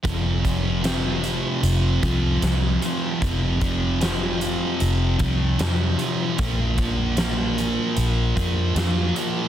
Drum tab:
HH |xxxxxxxx|xxxxxxxx|xxxxxxxx|
SD |--o---o-|--o---o-|--o---o-|
BD |oo---o--|oo---o--|oo---o--|